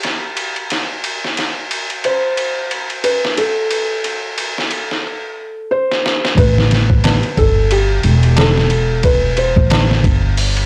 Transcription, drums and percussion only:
0, 0, Header, 1, 3, 480
1, 0, Start_track
1, 0, Key_signature, 0, "minor"
1, 0, Tempo, 666667
1, 749, Time_signature, 4, 2, 24, 8
1, 7674, End_track
2, 0, Start_track
2, 0, Title_t, "Tabla"
2, 5070, Note_on_c, 9, 60, 74
2, 5142, Note_off_c, 9, 60, 0
2, 6023, Note_on_c, 9, 60, 85
2, 6095, Note_off_c, 9, 60, 0
2, 6991, Note_on_c, 9, 60, 82
2, 7063, Note_off_c, 9, 60, 0
2, 7674, End_track
3, 0, Start_track
3, 0, Title_t, "Drums"
3, 25, Note_on_c, 9, 51, 55
3, 34, Note_on_c, 9, 38, 35
3, 97, Note_off_c, 9, 51, 0
3, 106, Note_off_c, 9, 38, 0
3, 265, Note_on_c, 9, 51, 72
3, 337, Note_off_c, 9, 51, 0
3, 404, Note_on_c, 9, 51, 37
3, 476, Note_off_c, 9, 51, 0
3, 506, Note_on_c, 9, 51, 61
3, 516, Note_on_c, 9, 38, 39
3, 578, Note_off_c, 9, 51, 0
3, 588, Note_off_c, 9, 38, 0
3, 748, Note_on_c, 9, 51, 72
3, 820, Note_off_c, 9, 51, 0
3, 896, Note_on_c, 9, 38, 31
3, 968, Note_off_c, 9, 38, 0
3, 988, Note_on_c, 9, 51, 57
3, 998, Note_on_c, 9, 38, 37
3, 1060, Note_off_c, 9, 51, 0
3, 1070, Note_off_c, 9, 38, 0
3, 1230, Note_on_c, 9, 51, 73
3, 1302, Note_off_c, 9, 51, 0
3, 1367, Note_on_c, 9, 51, 39
3, 1439, Note_off_c, 9, 51, 0
3, 1469, Note_on_c, 9, 51, 56
3, 1541, Note_off_c, 9, 51, 0
3, 1709, Note_on_c, 9, 51, 72
3, 1781, Note_off_c, 9, 51, 0
3, 1951, Note_on_c, 9, 51, 58
3, 2023, Note_off_c, 9, 51, 0
3, 2087, Note_on_c, 9, 51, 39
3, 2159, Note_off_c, 9, 51, 0
3, 2188, Note_on_c, 9, 51, 80
3, 2260, Note_off_c, 9, 51, 0
3, 2337, Note_on_c, 9, 38, 43
3, 2409, Note_off_c, 9, 38, 0
3, 2429, Note_on_c, 9, 51, 62
3, 2501, Note_off_c, 9, 51, 0
3, 2667, Note_on_c, 9, 51, 72
3, 2739, Note_off_c, 9, 51, 0
3, 2910, Note_on_c, 9, 51, 59
3, 2982, Note_off_c, 9, 51, 0
3, 3151, Note_on_c, 9, 51, 77
3, 3223, Note_off_c, 9, 51, 0
3, 3299, Note_on_c, 9, 38, 37
3, 3371, Note_off_c, 9, 38, 0
3, 3388, Note_on_c, 9, 51, 65
3, 3460, Note_off_c, 9, 51, 0
3, 3538, Note_on_c, 9, 38, 30
3, 3610, Note_off_c, 9, 38, 0
3, 4260, Note_on_c, 9, 38, 46
3, 4332, Note_off_c, 9, 38, 0
3, 4362, Note_on_c, 9, 38, 68
3, 4434, Note_off_c, 9, 38, 0
3, 4498, Note_on_c, 9, 38, 68
3, 4570, Note_off_c, 9, 38, 0
3, 4589, Note_on_c, 9, 36, 106
3, 4591, Note_on_c, 9, 51, 85
3, 4661, Note_off_c, 9, 36, 0
3, 4663, Note_off_c, 9, 51, 0
3, 4740, Note_on_c, 9, 38, 38
3, 4812, Note_off_c, 9, 38, 0
3, 4831, Note_on_c, 9, 51, 62
3, 4841, Note_on_c, 9, 38, 40
3, 4903, Note_off_c, 9, 51, 0
3, 4913, Note_off_c, 9, 38, 0
3, 4967, Note_on_c, 9, 36, 95
3, 5039, Note_off_c, 9, 36, 0
3, 5067, Note_on_c, 9, 51, 89
3, 5077, Note_on_c, 9, 38, 118
3, 5139, Note_off_c, 9, 51, 0
3, 5149, Note_off_c, 9, 38, 0
3, 5206, Note_on_c, 9, 51, 42
3, 5278, Note_off_c, 9, 51, 0
3, 5309, Note_on_c, 9, 36, 92
3, 5309, Note_on_c, 9, 51, 65
3, 5381, Note_off_c, 9, 36, 0
3, 5381, Note_off_c, 9, 51, 0
3, 5549, Note_on_c, 9, 51, 89
3, 5621, Note_off_c, 9, 51, 0
3, 5785, Note_on_c, 9, 51, 64
3, 5857, Note_off_c, 9, 51, 0
3, 5926, Note_on_c, 9, 51, 45
3, 5998, Note_off_c, 9, 51, 0
3, 6024, Note_on_c, 9, 51, 88
3, 6034, Note_on_c, 9, 38, 113
3, 6096, Note_off_c, 9, 51, 0
3, 6106, Note_off_c, 9, 38, 0
3, 6175, Note_on_c, 9, 38, 45
3, 6247, Note_off_c, 9, 38, 0
3, 6264, Note_on_c, 9, 51, 68
3, 6336, Note_off_c, 9, 51, 0
3, 6504, Note_on_c, 9, 51, 83
3, 6508, Note_on_c, 9, 36, 104
3, 6576, Note_off_c, 9, 51, 0
3, 6580, Note_off_c, 9, 36, 0
3, 6745, Note_on_c, 9, 51, 64
3, 6817, Note_off_c, 9, 51, 0
3, 6886, Note_on_c, 9, 36, 87
3, 6958, Note_off_c, 9, 36, 0
3, 6985, Note_on_c, 9, 51, 91
3, 6995, Note_on_c, 9, 38, 118
3, 7057, Note_off_c, 9, 51, 0
3, 7067, Note_off_c, 9, 38, 0
3, 7137, Note_on_c, 9, 38, 43
3, 7209, Note_off_c, 9, 38, 0
3, 7229, Note_on_c, 9, 36, 95
3, 7230, Note_on_c, 9, 51, 67
3, 7301, Note_off_c, 9, 36, 0
3, 7302, Note_off_c, 9, 51, 0
3, 7470, Note_on_c, 9, 46, 79
3, 7542, Note_off_c, 9, 46, 0
3, 7608, Note_on_c, 9, 51, 44
3, 7674, Note_off_c, 9, 51, 0
3, 7674, End_track
0, 0, End_of_file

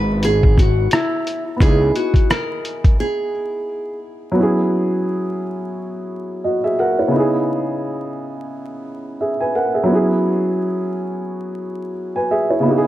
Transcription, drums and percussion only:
0, 0, Header, 1, 2, 480
1, 0, Start_track
1, 0, Tempo, 689655
1, 1119, Time_signature, 4, 2, 24, 8
1, 8958, End_track
2, 0, Start_track
2, 0, Title_t, "Drums"
2, 158, Note_on_c, 9, 42, 74
2, 228, Note_off_c, 9, 42, 0
2, 301, Note_on_c, 9, 36, 86
2, 370, Note_off_c, 9, 36, 0
2, 401, Note_on_c, 9, 36, 78
2, 413, Note_on_c, 9, 42, 59
2, 471, Note_off_c, 9, 36, 0
2, 482, Note_off_c, 9, 42, 0
2, 634, Note_on_c, 9, 42, 74
2, 648, Note_on_c, 9, 37, 108
2, 704, Note_off_c, 9, 42, 0
2, 718, Note_off_c, 9, 37, 0
2, 883, Note_on_c, 9, 42, 64
2, 953, Note_off_c, 9, 42, 0
2, 1116, Note_on_c, 9, 36, 113
2, 1124, Note_on_c, 9, 42, 68
2, 1186, Note_off_c, 9, 36, 0
2, 1193, Note_off_c, 9, 42, 0
2, 1361, Note_on_c, 9, 42, 56
2, 1430, Note_off_c, 9, 42, 0
2, 1488, Note_on_c, 9, 36, 86
2, 1501, Note_on_c, 9, 42, 35
2, 1558, Note_off_c, 9, 36, 0
2, 1571, Note_off_c, 9, 42, 0
2, 1606, Note_on_c, 9, 37, 104
2, 1606, Note_on_c, 9, 42, 60
2, 1676, Note_off_c, 9, 37, 0
2, 1676, Note_off_c, 9, 42, 0
2, 1844, Note_on_c, 9, 42, 57
2, 1913, Note_off_c, 9, 42, 0
2, 1980, Note_on_c, 9, 36, 81
2, 1981, Note_on_c, 9, 42, 31
2, 2049, Note_off_c, 9, 36, 0
2, 2050, Note_off_c, 9, 42, 0
2, 8958, End_track
0, 0, End_of_file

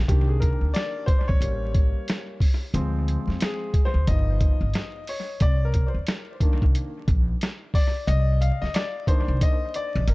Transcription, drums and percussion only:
0, 0, Header, 1, 2, 480
1, 0, Start_track
1, 0, Key_signature, -3, "minor"
1, 0, Tempo, 666667
1, 57, Time_signature, 4, 2, 24, 8
1, 7304, End_track
2, 0, Start_track
2, 0, Title_t, "Drums"
2, 60, Note_on_c, 9, 36, 100
2, 64, Note_on_c, 9, 42, 79
2, 132, Note_off_c, 9, 36, 0
2, 136, Note_off_c, 9, 42, 0
2, 302, Note_on_c, 9, 42, 68
2, 304, Note_on_c, 9, 36, 81
2, 374, Note_off_c, 9, 42, 0
2, 376, Note_off_c, 9, 36, 0
2, 537, Note_on_c, 9, 42, 82
2, 549, Note_on_c, 9, 38, 116
2, 609, Note_off_c, 9, 42, 0
2, 621, Note_off_c, 9, 38, 0
2, 775, Note_on_c, 9, 36, 84
2, 778, Note_on_c, 9, 42, 65
2, 847, Note_off_c, 9, 36, 0
2, 850, Note_off_c, 9, 42, 0
2, 929, Note_on_c, 9, 36, 90
2, 1001, Note_off_c, 9, 36, 0
2, 1020, Note_on_c, 9, 42, 99
2, 1092, Note_off_c, 9, 42, 0
2, 1256, Note_on_c, 9, 42, 69
2, 1257, Note_on_c, 9, 36, 101
2, 1328, Note_off_c, 9, 42, 0
2, 1329, Note_off_c, 9, 36, 0
2, 1497, Note_on_c, 9, 42, 79
2, 1509, Note_on_c, 9, 38, 104
2, 1569, Note_off_c, 9, 42, 0
2, 1581, Note_off_c, 9, 38, 0
2, 1731, Note_on_c, 9, 36, 82
2, 1740, Note_on_c, 9, 46, 47
2, 1803, Note_off_c, 9, 36, 0
2, 1812, Note_off_c, 9, 46, 0
2, 1975, Note_on_c, 9, 42, 84
2, 2047, Note_off_c, 9, 42, 0
2, 2218, Note_on_c, 9, 42, 68
2, 2290, Note_off_c, 9, 42, 0
2, 2375, Note_on_c, 9, 38, 33
2, 2447, Note_off_c, 9, 38, 0
2, 2451, Note_on_c, 9, 42, 90
2, 2463, Note_on_c, 9, 38, 110
2, 2523, Note_off_c, 9, 42, 0
2, 2535, Note_off_c, 9, 38, 0
2, 2691, Note_on_c, 9, 36, 79
2, 2692, Note_on_c, 9, 42, 66
2, 2763, Note_off_c, 9, 36, 0
2, 2764, Note_off_c, 9, 42, 0
2, 2934, Note_on_c, 9, 42, 97
2, 2935, Note_on_c, 9, 36, 92
2, 3006, Note_off_c, 9, 42, 0
2, 3007, Note_off_c, 9, 36, 0
2, 3173, Note_on_c, 9, 36, 109
2, 3173, Note_on_c, 9, 42, 72
2, 3245, Note_off_c, 9, 36, 0
2, 3245, Note_off_c, 9, 42, 0
2, 3409, Note_on_c, 9, 42, 78
2, 3422, Note_on_c, 9, 38, 98
2, 3481, Note_off_c, 9, 42, 0
2, 3494, Note_off_c, 9, 38, 0
2, 3652, Note_on_c, 9, 46, 47
2, 3724, Note_off_c, 9, 46, 0
2, 3889, Note_on_c, 9, 42, 83
2, 3893, Note_on_c, 9, 36, 101
2, 3961, Note_off_c, 9, 42, 0
2, 3965, Note_off_c, 9, 36, 0
2, 4131, Note_on_c, 9, 42, 76
2, 4138, Note_on_c, 9, 36, 82
2, 4203, Note_off_c, 9, 42, 0
2, 4210, Note_off_c, 9, 36, 0
2, 4368, Note_on_c, 9, 42, 92
2, 4380, Note_on_c, 9, 38, 112
2, 4440, Note_off_c, 9, 42, 0
2, 4452, Note_off_c, 9, 38, 0
2, 4611, Note_on_c, 9, 36, 85
2, 4613, Note_on_c, 9, 42, 63
2, 4683, Note_off_c, 9, 36, 0
2, 4685, Note_off_c, 9, 42, 0
2, 4766, Note_on_c, 9, 36, 83
2, 4838, Note_off_c, 9, 36, 0
2, 4859, Note_on_c, 9, 42, 108
2, 4931, Note_off_c, 9, 42, 0
2, 5095, Note_on_c, 9, 36, 98
2, 5096, Note_on_c, 9, 42, 68
2, 5167, Note_off_c, 9, 36, 0
2, 5168, Note_off_c, 9, 42, 0
2, 5337, Note_on_c, 9, 42, 89
2, 5349, Note_on_c, 9, 38, 109
2, 5409, Note_off_c, 9, 42, 0
2, 5421, Note_off_c, 9, 38, 0
2, 5572, Note_on_c, 9, 36, 86
2, 5581, Note_on_c, 9, 46, 47
2, 5644, Note_off_c, 9, 36, 0
2, 5653, Note_off_c, 9, 46, 0
2, 5818, Note_on_c, 9, 42, 85
2, 5890, Note_off_c, 9, 42, 0
2, 6060, Note_on_c, 9, 42, 69
2, 6132, Note_off_c, 9, 42, 0
2, 6219, Note_on_c, 9, 38, 35
2, 6291, Note_off_c, 9, 38, 0
2, 6294, Note_on_c, 9, 42, 97
2, 6307, Note_on_c, 9, 38, 106
2, 6366, Note_off_c, 9, 42, 0
2, 6379, Note_off_c, 9, 38, 0
2, 6532, Note_on_c, 9, 36, 84
2, 6537, Note_on_c, 9, 42, 70
2, 6604, Note_off_c, 9, 36, 0
2, 6609, Note_off_c, 9, 42, 0
2, 6778, Note_on_c, 9, 36, 93
2, 6778, Note_on_c, 9, 42, 100
2, 6850, Note_off_c, 9, 36, 0
2, 6850, Note_off_c, 9, 42, 0
2, 7015, Note_on_c, 9, 42, 78
2, 7087, Note_off_c, 9, 42, 0
2, 7254, Note_on_c, 9, 42, 82
2, 7304, Note_off_c, 9, 42, 0
2, 7304, End_track
0, 0, End_of_file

